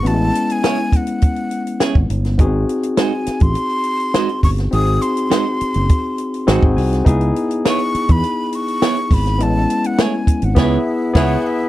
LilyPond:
<<
  \new Staff \with { instrumentName = "Flute" } { \time 4/4 \key cis \minor \tempo 4 = 103 a''8. gis''8. fis''2 r8 | r4 gis''8. bis''4.~ bis''16 cis'''8 | dis'''8 bis''2. r8 | r4 cis'''8. b''8. cis'''4 b''8 |
a''8. fis''16 gis''8. fis''16 e''4 fis''8 e''8 | }
  \new Staff \with { instrumentName = "Clean electric guitar" } { \time 4/4 \key cis \minor r4 <cis' e' gis' cis''>8 r4. <cis' e' gis' cis''>8 r8 | r4 <gis dis' fis' bis'>8 r4. <gis dis' fis' bis'>8 r8 | r4 <gis dis' fis' bis'>8 r4. <gis dis' fis' bis'>8 r8 | r4 <b e' gis' cis''>8 r4. <b e' gis' cis''>8 r8 |
r4 <a e' gis' cis''>8 r8 <b e' gis' cis''>8 r8 <b e' gis' cis''>8 r8 | }
  \new Staff \with { instrumentName = "Tine electric piano" } { \time 4/4 \key cis \minor << { r1 | r1 | r2. fis''8 gis''8 | r1 |
r1 | } \\ { <gis b cis' e' fis'>1 | <b bis dis' fis' gis'>1 | <bis dis' fis' gis'>2. <bis dis' fis' gis'>4 | <b dis' e' gis'>1 |
<gis b cis' e'>2 <b e' gis'>8 r8 <b e' gis'>8 r8 | } >> }
  \new Staff \with { instrumentName = "Fingered electric bass" } { \clef bass \time 4/4 \key cis \minor a,,8 r2 r8. gis,,16 g,,8 | gis,,8 r4 r16 a,,16 r4. g,,8 | gis,,8 r4 r16 fis,,16 r4 gis,,16 gis,,16 bis,,8 | cis,8 r4 r16 e,16 r4. gis,,8 |
a,,8 r4 r16 gis,,16 cis,8 r8 cis,8 r8 | }
  \new DrumStaff \with { instrumentName = "Drums" } \drummode { \time 4/4 hh8 hh16 hh16 <hh sn>16 hh16 <hh bd>16 hh16 <hh bd>16 hh16 hh16 hh16 <hh sn>16 bd16 hh16 <hh sn>16 | <hh bd>8 hh16 hh16 <hh sn>8 <hh sn>16 <hh bd>16 hh16 hh16 hh16 hh16 <hh sn>16 hh16 <hho bd>16 <hh sn>16 | hh16 hh16 hh16 hh16 <hh sn>8 hh16 hh16 <hh bd>8 hh16 hh16 <hh sn>16 bd16 hho16 <hh sn>16 | <hh bd>16 hh16 hh16 hh16 <hh sn>16 hh16 hh16 <hh bd>16 hh8 hh16 hh16 <hh sn>16 hh16 <hho bd>16 <hh sn>16 |
hh8 hh16 hh16 <hh sn>8 <hh bd>16 hh16 <cymc bd sn>4 <cymc bd sn>4 | }
>>